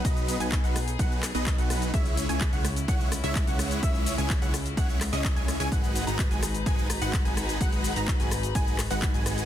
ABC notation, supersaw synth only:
X:1
M:4/4
L:1/16
Q:1/4=127
K:C#dor
V:1 name="Supersaw synth"
[F,B,DBd]3 [F,B,DBg]2 [F,B,DBf] z2 [F,B,DBf]2 z [F,B,DBd]2 [F,B,DBf]3 | [G,CEce]3 [G,CEcg]2 [G,CEcf] z2 [G,CEcf]2 z [G,CEce]2 [G,CEcf]3 | [G,CEce]3 [G,CEcg]2 [G,CEcf] z2 [G,CEcf]2 z [G,CEcd]2 [G,CEcg]2 [G,CEcg] | [G,DFBf]3 [G,DFBa]2 [G,DFBg] z2 [G,DFBg]2 z [G,DFBf]2 [G,DFBg]3 |
[G,DFBf]3 [G,DFBa]2 [G,DFBg] z2 [G,DFBg]2 z [G,DFBf]2 [G,DFBg]3 |]